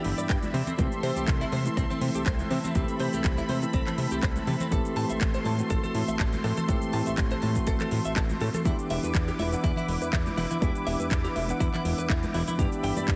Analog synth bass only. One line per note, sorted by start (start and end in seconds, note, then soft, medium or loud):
0.05 0.13 G1 loud
0.18 0.27 G2 soft
0.30 0.38 G2 medium
0.54 0.62 C3 loud
0.79 0.87 C2 loud
1.03 1.12 C3 medium
1.17 1.26 C2 soft
1.28 1.44 C2 medium
1.52 1.69 C3 medium
1.77 1.86 C2 loud
2.01 2.10 C3 loud
2.15 2.24 C2 soft
2.26 2.43 C2 medium
2.50 2.59 C3 loud
2.75 2.84 C2 loud
3.00 3.08 C3 medium
3.13 3.22 C2 soft
3.24 3.41 C2 medium
3.49 3.66 C3 medium
3.74 3.82 C2 loud
3.98 4.07 C3 loud
4.11 4.20 C2 soft
4.23 4.39 C2 medium
4.47 4.56 C3 loud
4.72 4.81 A1 loud
4.96 5.05 A2 medium
5.10 5.19 A1 soft
5.21 5.38 A1 medium
5.45 5.62 A2 medium
5.70 5.79 A1 loud
5.95 6.03 A2 medium
6.08 6.17 A1 soft
6.19 6.36 A1 medium
6.44 6.53 A2 loud
6.69 6.77 A1 loud
6.93 7.02 A2 medium
7.07 7.16 A1 soft
7.18 7.34 A1 medium
7.43 7.59 A2 medium
7.67 7.76 A1 loud
7.92 8.00 A2 medium
8.05 8.14 A1 soft
8.16 8.33 A1 medium
8.41 8.49 A2 loud
8.65 8.74 E2 loud
8.90 8.99 E1 medium
9.03 9.12 E2 soft
9.15 9.31 E2 medium
9.39 9.56 E1 medium
9.64 9.72 E2 loud
9.88 9.97 E1 medium
10.02 10.11 E2 soft
10.13 10.29 E2 medium
10.37 10.46 E1 loud
10.62 10.71 E2 loud
10.87 10.95 E1 medium
11.00 11.09 E2 soft
11.11 11.28 E2 medium
11.36 11.52 E1 medium
11.60 11.69 E2 loud
11.85 11.94 E1 medium
11.98 12.07 E2 soft
12.10 12.26 E2 medium
12.34 12.43 E1 loud
12.59 12.67 G2 loud
12.83 12.92 G1 medium
12.96 13.06 G2 soft
13.08 13.16 G2 medium